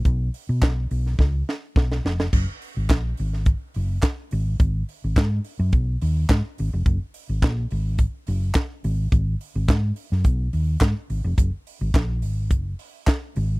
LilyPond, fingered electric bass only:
\new Staff \with { instrumentName = "Fingered electric bass" } { \clef bass \time 4/4 \key fis \major \tempo 4 = 106 b,,8 r16 b,16 b,,8 b,,8 cis,8 r8 b,,8 eis,,8 | fis,,16 r8 gis,,16 ais,,8 gis,,8. r16 fis,,8 r8 gis,,8 | gis,,8 r16 gis,,16 gis,8 r16 fis,16 b,,8 dis,8 gis,16 r16 gis,,16 eis,,16 | fis,,16 r8 gis,,16 ais,,8 gis,,8. r16 fis,,8 r8 gis,,8 |
gis,,8 r16 gis,,16 gis,8 r16 fis,16 b,,8 dis,8 gis,16 r16 gis,,16 eis,,16 | fis,,16 r8 gis,,16 ais,,8 gis,,8 fis,,8 r4 gis,,8 | }